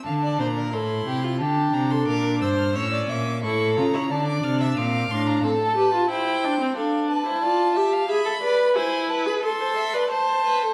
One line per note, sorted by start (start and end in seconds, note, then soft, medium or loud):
0.05 0.41 D3 medium
0.05 0.69 D4 medium
0.05 0.13 F5 medium
0.05 0.41 A5 medium
0.23 0.40 D5 loud
0.40 0.75 A#2 medium
0.40 0.47 C5 medium
0.40 0.74 A#5 medium
0.57 0.75 A#4 medium
0.73 1.06 A2 medium
0.73 1.39 E4 medium
0.73 1.06 A4 medium
0.73 1.40 C6 medium
1.06 1.41 C3 medium
1.06 1.25 G4 loud
1.24 1.42 F4 medium
1.40 1.73 D3 medium
1.40 2.73 D4 medium
1.40 1.92 G4 medium
1.40 1.75 A5 medium
1.73 2.07 C3 medium
1.73 1.93 A#5 medium
1.91 2.07 A4 medium
1.91 2.07 C6 medium
2.07 2.43 A#2 medium
2.07 2.41 A#4 loud
2.07 2.41 D6 medium
2.41 2.77 G2 medium
2.41 2.76 C5 loud
2.41 2.48 E6 medium
2.59 2.75 F6 medium
2.75 3.09 A2 medium
2.75 3.42 C#4 medium
2.75 2.92 C#5 loud
2.75 3.08 E6 loud
2.92 3.11 D5 medium
3.09 3.45 A#2 medium
3.09 3.42 E5 medium
3.09 3.43 D6 medium
3.43 3.79 A2 medium
3.43 3.77 E4 medium
3.43 3.95 A4 loud
3.43 3.77 C#6 medium
3.77 4.12 C#3 medium
3.77 3.84 F4 medium
3.77 4.12 A#5 medium
3.94 4.01 E4 medium
3.94 4.10 C#5 medium
4.10 4.43 D3 medium
4.10 4.79 D4 medium
4.10 4.62 D5 medium
4.10 4.27 A5 medium
4.27 4.45 D6 medium
4.44 4.77 C3 medium
4.44 4.60 F6 medium
4.61 4.76 E5 medium
4.61 4.79 E6 medium
4.76 5.10 A#2 medium
4.76 5.10 C4 medium
4.76 5.42 F5 loud
4.76 5.12 D6 loud
5.11 5.44 A2 medium
5.11 5.45 D4 medium
5.11 5.28 C6 medium
5.27 5.45 A#5 medium
5.43 5.60 C4 medium
5.43 5.76 A4 medium
5.43 6.10 A5 loud
5.61 5.77 A4 loud
5.77 5.94 G4 loud
5.77 6.09 B4 medium
5.94 6.10 F4 loud
6.10 6.45 E4 loud
6.10 6.77 C5 loud
6.10 6.75 G5 loud
6.44 6.60 D4 loud
6.60 6.77 C4 loud
6.76 7.26 D4 loud
6.76 7.09 A4 medium
6.76 7.09 F5 medium
7.09 7.27 B4 medium
7.09 8.08 A5 loud
7.26 7.45 E4 medium
7.26 7.42 C5 medium
7.42 7.78 F4 loud
7.42 7.74 D5 medium
7.75 8.09 G4 loud
7.75 7.94 E5 medium
7.93 8.11 F5 loud
8.09 8.25 G#4 loud
8.09 8.42 E5 loud
8.09 8.75 B5 loud
8.26 8.32 A4 loud
8.42 8.77 B4 loud
8.42 8.75 D5 loud
8.76 9.28 E4 loud
8.76 9.09 C5 medium
8.76 9.11 G#5 loud
9.09 9.44 B4 loud
9.09 9.26 A5 medium
9.26 9.42 G#4 loud
9.26 9.33 B5 medium
9.43 9.62 A4 medium
9.43 9.95 A4 loud
9.43 10.09 C6 loud
9.60 9.76 C5 medium
9.77 9.96 E5 loud
9.93 10.10 B4 loud
9.93 10.13 D5 medium
10.10 10.74 C5 loud
10.10 10.44 C5 medium
10.10 10.74 A5 loud
10.45 10.63 B4 loud
10.62 10.74 A4 medium